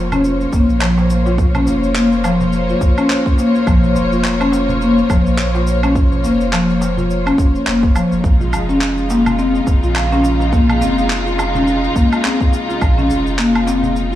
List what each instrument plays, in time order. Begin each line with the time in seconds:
Already playing: sub bass F1, string section A#3 F4 C5 C#5
0.12 marimba C#4, darbuka dum, low woodblock, shaker
0.24 shaker
0.41 shaker
0.52 sub bass F1, marimba A#3, kick, darbuka ka, shaker
0.69 sub bass A#1, shaker
0.81 marimba F3, clap, low woodblock, shaker
0.98 darbuka tek, shaker
1.10 shaker
1.26 marimba F4, darbuka ka, darbuka tek, shaker
1.38 kick, shaker
1.55 marimba C#4, darbuka dum, low woodblock, shaker
1.67 sub bass F1, darbuka ka, shaker
1.83 shaker
1.96 marimba A#3, clap, shaker
2.11 darbuka tek, shaker
2.24 marimba F3, darbuka tek, low woodblock, shaker
2.40 darbuka dum, shaker
2.53 shaker
2.69 marimba F4, shaker
2.81 sub bass G1, kick, darbuka ka, shaker
2.98 marimba C#4, low woodblock, shaker
3.10 clap, shaker
3.25 kick, darbuka ka, shaker
3.38 marimba A#3, darbuka tek, shaker
3.55 shaker
3.67 sub bass A#1, marimba F3, kick, low woodblock, shaker
3.83 darbuka dum, shaker
3.95 sub bass F1, darbuka ka, shaker
4.12 marimba F4, shaker
4.25 clap, shaker
4.40 marimba C#4, low woodblock, shaker
4.52 darbuka tek, shaker
4.69 darbuka dum, shaker
4.81 marimba A#3, shaker
4.98 shaker
5.09 sub bass F1, marimba F3, kick, darbuka ka, low woodblock, shaker
5.26 sub bass A#1, shaker
5.39 clap, shaker
5.55 marimba F4, darbuka tek, shaker
5.67 shaker
5.83 marimba C#4, darbuka ka, darbuka tek, low woodblock, shaker
5.95 kick, shaker
6.12 darbuka dum, shaker
6.24 sub bass F1, marimba A#3, darbuka ka, shaker
6.41 shaker
6.52 marimba F3, clap, low woodblock, shaker
6.69 darbuka tek, shaker
6.81 darbuka tek, shaker
6.97 marimba F4, darbuka dum, shaker
7.11 shaker
7.26 marimba C#4, low woodblock, shaker
7.38 sub bass F1, kick, darbuka ka, shaker
7.55 shaker
7.67 sub bass F1, marimba A#3, clap, shaker
7.83 kick, darbuka ka, shaker
7.95 marimba F3, darbuka tek, low woodblock, shaker
8.12 sub bass F1, shaker
8.24 sub bass A#1, string section C#3 G#3 D#4 F4, kick, shaker
8.40 marimba F4, darbuka dum, shaker
8.53 sub bass F1, darbuka ka, low woodblock, shaker
8.69 marimba C#4, shaker
8.81 clap, shaker
8.98 shaker
9.10 marimba A#3, darbuka tek, shaker
9.26 darbuka dum, low woodblock, shaker
9.39 marimba C4, shaker
9.55 shaker
9.67 sub bass F1, kick, darbuka ka, shaker
9.83 sub bass A#1, marimba F4, shaker
9.96 clap, low woodblock, shaker
10.12 marimba C#4, darbuka tek, shaker
10.24 shaker
10.40 darbuka ka, darbuka tek, shaker
10.53 marimba A#3, kick, shaker
10.69 darbuka dum, low woodblock, shaker
10.81 sub bass F1, marimba C4, darbuka ka, shaker
10.98 shaker
11.10 clap, shaker
11.26 marimba F4, darbuka tek, shaker
11.38 darbuka tek, low woodblock, shaker
11.55 marimba C#4, darbuka dum, shaker
11.67 shaker
11.84 shaker
11.95 sub bass G#1, marimba A#3, kick, darbuka ka, shaker
12.13 low woodblock, shaker
12.24 marimba C4, clap, shaker
12.40 kick, darbuka ka, shaker
12.53 darbuka tek, shaker
12.69 marimba F4, shaker
12.81 sub bass A#1, kick, low woodblock, shaker
12.97 marimba C#4, darbuka dum, shaker
13.10 sub bass F1, darbuka ka, shaker
13.27 shaker
13.38 marimba A#3, clap, shaker
13.55 low woodblock, shaker
13.67 marimba C4, darbuka tek, shaker
13.83 darbuka dum, shaker
13.96 shaker
14.12 marimba F4